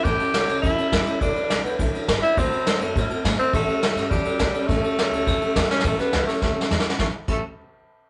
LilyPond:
<<
  \new Staff \with { instrumentName = "Steel-string acoustic guitar" } { \time 4/4 \key a \mixolydian \tempo 4 = 208 <a, e g cis' e' a'>8 <g cis' e' a'>8 <g cis' e' a'>8 <g cis' e' a'>8 <a, e g cis' e' a'>8 <g cis' e' a'>8 <g cis' e' a'>8 <g cis' e' a'>8 | <e gis d' e' b'>8 <d' e' b'>8 <gis d' e' b'>8 <d' e' b'>8 <e gis d' e' b'>8 <d' e' b'>8 <gis d' e' b'>8 <d' e' b'>8 | <d a c' fis' a'>8 <c' fis' a'>8 <a c' fis' a'>8 <c' fis' a'>8 <d a c' fis' a'>8 <c' fis' a'>8 <a c' fis' a'>8 <c' fis' a'>8 | <a, e g cis' g' a'>8 <g cis' g' a'>8 <g cis' g' a'>8 <g cis' g' a'>8 <a, e g cis' g' a'>8 <g cis' g' a'>8 <g cis' g' a'>8 <g cis' g' a'>8 |
<a, e g cis' g' a'>8 <g cis' g' a'>8 <g cis' g' a'>8 <g cis' g' a'>8 <a, e g cis' g' a'>8 <g cis' g' a'>8 <g cis' g' a'>8 <g cis' g' a'>8 | <a, e g cis' g' a'>8 <g cis' g' a'>8 <a, e g cis' g' a'>8 <g cis' g' a'>8 <g cis' g' a'>8 <g cis' g' a'>8 <a, e g cis' g' a'>8 <g cis' g' a'>8 | <a, e g cis' e' a'>8 r8 <a, e g cis' e' a'>8 r2 r8 | }
  \new Staff \with { instrumentName = "Tenor saxophone" } { \time 4/4 \key a \mixolydian g'2 e'2 | d'4. b8 r4. e'8 | c'4. a8 r4. c'8 | a2 g2 |
a2.~ a8 cis'8 | a8 b4 a8 a4. r8 | a8 r8 a8 r2 r8 | }
  \new Staff \with { instrumentName = "Upright bass" } { \clef bass \time 4/4 \key a \mixolydian a,,8 r8 cis,8 cis,8 e,8 r8 e,8 r8 | e,,8 r8 b,,8 d,8 b,,8 r8 gis,,8 r8 | d,8 r8 fis,8 fis,8 a,8 r8 a,8 r8 | a,,8 r8 e,8 g,8 e,8 r8 cis,8 r8 |
a,,8 r8 cis,8 cis,8 e,8 r8 e,8 r8 | a,,8 r8 cis,8 r8 d,8 r8 e,8 r8 | a,,8 r8 a,,8 r2 r8 | }
  \new DrumStaff \with { instrumentName = "Drums" } \drummode { \time 4/4 <bd cymr>8 cymr8 <cymr sn>8 cymr8 <bd cymr>8 cymr8 <bd cymr sn>8 cymr8 | <bd cymr>8 cymr8 <cymr sn>8 cymr8 <bd cymr>8 cymr8 <bd cymr sn>8 cymr8 | <bd cymr>8 cymr8 <cymr sn>8 cymr8 <bd cymr>8 cymr8 <bd cymr sn>8 cymr8 | <bd cymr>8 cymr8 <cymr sn>8 <cymr sn>8 <bd cymr>8 cymr8 <bd cymr sn>8 cymr8 |
<bd cymr>8 cymr8 <cymr sn>8 cymr8 <bd cymr>8 cymr8 \tuplet 3/2 { <bd cymr sn>16 r16 r16 sn16 r16 sn16 } | <bd cymr>8 <cymr sn>8 <cymr sn>8 <cymr sn>8 \tuplet 3/2 { <bd sn>8 r8 sn8 sn8 sn8 sn8 } | <bd sn>4 <cymc bd>4 r4 r4 | }
>>